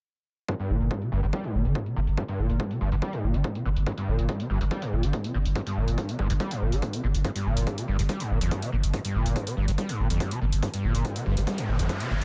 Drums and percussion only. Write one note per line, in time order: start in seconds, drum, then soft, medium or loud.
0.48 kick loud
0.60 closed hi-hat medium
0.81 closed hi-hat medium
0.91 kick loud
1.02 closed hi-hat medium
1.23 closed hi-hat medium
1.33 kick loud
1.44 closed hi-hat medium
1.65 closed hi-hat medium
1.75 kick loud
1.75 closed hi-hat medium
1.86 closed hi-hat medium
2.07 closed hi-hat medium
2.17 kick loud
2.17 closed hi-hat medium
2.29 closed hi-hat medium
2.50 closed hi-hat medium
2.60 kick loud
2.60 closed hi-hat medium
2.71 closed hi-hat medium
2.92 closed hi-hat medium
3.02 kick loud
3.02 closed hi-hat medium
3.13 closed hi-hat medium
3.34 closed hi-hat medium
3.44 kick loud
3.44 closed hi-hat medium
3.55 closed hi-hat medium
3.77 closed hi-hat medium
3.87 kick loud
3.87 closed hi-hat medium
3.98 closed hi-hat medium
4.19 closed hi-hat medium
4.29 kick loud
4.29 closed hi-hat medium
4.40 closed hi-hat medium
4.61 closed hi-hat medium
4.71 kick loud
4.71 closed hi-hat medium
4.82 closed hi-hat medium
5.03 closed hi-hat medium
5.13 kick loud
5.13 closed hi-hat medium
5.24 closed hi-hat medium
5.45 closed hi-hat medium
5.56 kick loud
5.56 closed hi-hat medium
5.67 closed hi-hat medium
5.88 closed hi-hat medium
5.98 kick loud
5.98 closed hi-hat medium
6.09 closed hi-hat medium
6.19 kick medium
6.30 closed hi-hat medium
6.40 kick loud
6.40 closed hi-hat medium
6.51 closed hi-hat medium
6.72 closed hi-hat medium
6.82 kick loud
6.82 closed hi-hat medium
6.93 closed hi-hat medium
7.15 closed hi-hat medium
7.25 kick loud
7.25 closed hi-hat medium
7.36 closed hi-hat medium
7.57 closed hi-hat medium
7.67 kick loud
7.67 closed hi-hat medium
7.78 closed hi-hat medium
7.99 closed hi-hat medium
8.09 kick loud
8.09 closed hi-hat medium
8.20 closed hi-hat medium
8.41 closed hi-hat medium
8.51 kick loud
8.51 closed hi-hat medium
8.62 closed hi-hat medium
8.84 closed hi-hat medium
8.94 kick loud
8.94 closed hi-hat medium
9.05 closed hi-hat medium
9.26 closed hi-hat medium
9.36 kick loud
9.36 closed hi-hat medium
9.47 closed hi-hat medium
9.68 closed hi-hat medium
9.78 kick loud
9.78 closed hi-hat medium
9.89 closed hi-hat medium
10.10 closed hi-hat medium
10.20 kick loud
10.20 closed hi-hat medium
10.31 closed hi-hat medium
10.53 closed hi-hat medium
10.63 kick loud
10.63 closed hi-hat medium
10.74 closed hi-hat medium
10.95 closed hi-hat medium
11.05 kick loud
11.05 closed hi-hat medium
11.16 closed hi-hat medium
11.37 closed hi-hat medium
11.47 kick loud
11.47 closed hi-hat medium
11.58 closed hi-hat medium
11.79 closed hi-hat medium
11.89 kick loud
11.89 closed hi-hat medium
12.00 closed hi-hat medium